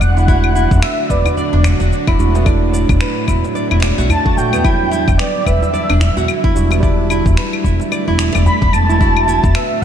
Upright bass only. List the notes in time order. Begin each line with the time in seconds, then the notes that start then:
0.01 E1
0.71 E1
1.10 E1
1.53 E1
1.80 E1
2.08 E1
2.19 E1
2.89 E1
3.28 E1
3.71 E1
3.98 B1
4.37 A1
4.53 E2
5.08 E1
5.46 E1
5.90 E1
6.17 E1
6.44 E1
6.56 E1
7.26 E1
7.64 E1
8.08 E1
8.35 E1
8.62 E1
8.74 E1
9.44 E1